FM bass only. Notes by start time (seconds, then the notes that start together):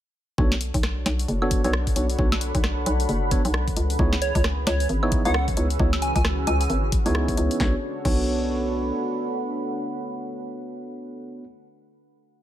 0.38 B1
0.74 B1
1.06 B1
1.28 F#1
1.65 B1
1.96 B1
2.19 B1
2.55 B1
2.86 B1
3.09 F#1
3.45 B1
3.77 C#2
3.99 C#2
4.35 C#2
4.67 C#2
4.90 G#1
5.25 C#2
5.57 C#2
5.79 C#2
6.16 C#2
6.47 C#2
6.70 G#1
7.06 C#2
7.38 C#2
7.60 B1
8.05 B1